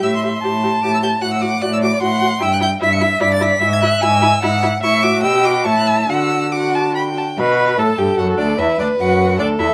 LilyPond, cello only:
\new Staff \with { instrumentName = "Cello" } { \clef bass \time 3/4 \key d \mixolydian \tempo 4 = 150 a,4 a,4 a,4 | a,4 a,4 a,4 | \key d \major g,4 g,4 g,4 | gis,4 gis,4 gis,4 |
a,4 b,4 a,4 | d2~ d8 r8 | b,4 a,8 g,8 fis,8 d,8 | e,8 d,8 fis,4 d,8 e,8 | }